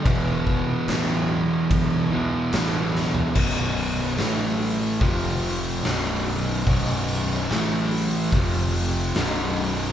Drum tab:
CC |x---x---x---x---|x---------------|----------------|
HH |----------------|--o-o-o-o-o-o-o-|o-o-o-o-o-o-o-o-|
SD |----o-------o-o-|---oo-------o---|---oo-------o---|
FT |---------------o|----------------|----------------|
BD |o-o-----o-------|o-------o-------|o-------o-------|